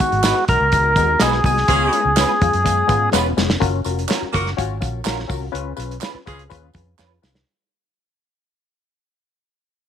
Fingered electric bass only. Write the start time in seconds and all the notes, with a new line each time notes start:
0.12 G#1
0.49 B1
0.61 C#2
0.96 D#2
1.21 B1
1.44 C2
1.68 C#2
2.05 C#2
2.42 F2
2.54 F#2
2.89 G#2
3.13 E1
3.37 F1
3.61 F#1
3.86 F1
4.22 muted fingered electric bass stroke
4.34 F#1
4.59 G#1
4.82 A#1
5.06 A#1
5.30 C2
5.54 C#2
5.78 B1
6.14 muted fingered electric bass stroke
6.28 C#2
6.51 D#2
6.75 F2
6.99 F2
7.23 C2